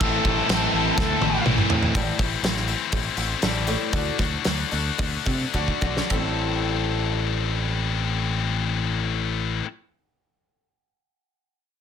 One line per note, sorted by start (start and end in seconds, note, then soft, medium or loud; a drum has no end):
0.00 0.17 A1 loud
0.00 0.48 A2 loud
0.00 0.48 E3 loud
0.00 0.26 A3 loud
0.00 0.25 C4 loud
0.00 0.24 E4 loud
0.00 1.42 A4 medium
0.00 kick loud
0.00 crash medium
0.24 0.41 A1 loud
0.24 0.48 A3 medium
0.24 0.49 C4 medium
0.24 0.50 E4 medium
0.24 kick medium
0.49 0.65 A1 loud
0.49 0.97 E3 medium
0.49 0.74 A3 medium
0.49 0.73 C4 medium
0.49 0.72 E4 medium
0.49 snare loud
0.49 crash medium
0.73 0.90 A1 medium
0.73 1.23 A3 medium
0.73 1.21 C4 medium
0.73 1.21 E4 medium
0.97 1.14 D2 medium
0.97 1.45 A2 loud
0.97 1.24 A3 loud
0.97 1.22 C4 loud
0.97 1.20 E4 loud
0.97 kick loud
0.97 snare medium
1.21 1.38 A1 medium
1.21 1.45 A3 medium
1.21 1.45 C4 medium
1.21 1.46 E4 medium
1.21 high tom medium
1.45 1.62 A1 medium
1.45 1.92 A2 loud
1.45 1.93 E3 loud
1.45 1.93 A3 loud
1.45 1.93 C4 loud
1.45 1.93 E4 loud
1.45 mid tom loud
1.58 mid tom medium
1.70 1.97 A2 loud
1.70 1.94 A2 medium
1.70 1.94 E3 medium
1.70 1.94 A3 medium
1.70 1.93 C4 loud
1.70 1.93 E4 loud
1.70 floor tom loud
1.83 floor tom loud
1.94 2.10 A1 medium
1.94 2.41 A2 medium
1.94 2.41 E3 medium
1.94 2.18 G3 medium
1.94 2.19 A3 medium
1.94 2.17 C4 loud
1.94 2.16 E4 medium
1.94 kick loud
1.94 open hi-hat medium
2.17 2.34 A1 medium
2.17 2.41 A2 medium
2.17 2.43 A3 medium
2.17 2.42 C4 medium
2.17 2.42 E4 medium
2.17 kick medium
2.17 open hi-hat soft
2.42 2.74 A1 medium
2.42 2.92 A2 medium
2.42 2.92 E3 medium
2.42 2.69 A3 loud
2.42 2.67 C4 loud
2.42 2.66 E4 medium
2.42 snare loud
2.42 open hi-hat medium
2.56 snare soft
2.67 2.90 A2 medium
2.67 3.42 A3 medium
2.67 3.43 C4 medium
2.67 3.43 E4 medium
2.67 open hi-hat soft
2.92 3.08 A1 medium
2.92 3.15 A2 medium
2.92 3.15 A3 medium
2.92 kick loud
2.92 open hi-hat medium
3.17 3.33 A1 medium
3.17 3.40 A2 medium
3.17 3.40 A3 medium
3.17 open hi-hat medium
3.42 3.75 A1 medium
3.42 3.66 A2 medium
3.42 3.92 E3 medium
3.42 3.67 G3 medium
3.42 3.69 A3 medium
3.42 3.67 C4 medium
3.42 3.66 E4 medium
3.42 snare loud
3.42 open hi-hat medium
3.67 3.92 A2 medium
3.67 3.92 G3 medium
3.67 3.94 A3 medium
3.67 3.92 C4 medium
3.67 3.92 E4 medium
3.67 open hi-hat soft
3.93 4.09 D2 medium
3.93 4.44 D3 medium
3.93 4.20 A3 medium
3.93 4.19 D4 medium
3.93 4.18 F#4 medium
3.93 kick medium
3.93 open hi-hat medium
4.19 4.35 D2 medium
4.19 4.43 D3 medium
4.19 4.45 A3 medium
4.19 4.46 D4 medium
4.19 4.46 F#4 medium
4.19 kick medium
4.19 snare soft
4.19 open hi-hat medium
4.44 4.63 D2 medium
4.44 4.99 D3 medium
4.44 4.73 A3 medium
4.44 4.72 D4 medium
4.44 4.71 F#4 medium
4.44 snare loud
4.44 open hi-hat medium
4.71 4.89 D2 medium
4.71 4.96 D3 medium
4.71 5.53 A3 medium
4.71 5.54 D4 medium
4.71 5.55 F#4 medium
4.71 open hi-hat soft
4.98 5.16 D2 medium
4.98 5.23 D3 medium
4.98 5.24 D4 medium
4.98 kick loud
4.98 open hi-hat medium
5.26 5.44 C3 medium
5.26 5.51 D3 medium
5.26 5.51 D4 medium
5.26 kick medium
5.26 open hi-hat soft
5.54 5.72 D2 medium
5.54 6.09 D3 medium
5.54 5.83 A3 medium
5.54 5.82 D4 medium
5.54 5.81 F#4 medium
5.54 kick soft
5.68 kick soft
5.81 6.00 B1 medium
5.81 6.09 D3 medium
5.81 6.10 A3 medium
5.81 6.10 D4 medium
5.81 6.09 F#4 medium
5.81 kick medium
5.97 snare medium
6.10 9.61 A1 medium
6.10 9.64 A2 medium
6.10 9.64 E3 medium
6.10 9.65 G3 medium
6.10 9.66 A3 loud
6.10 9.66 C4 medium
6.10 9.67 E4 medium
6.10 9.68 A4 medium
6.10 kick medium
6.10 ride medium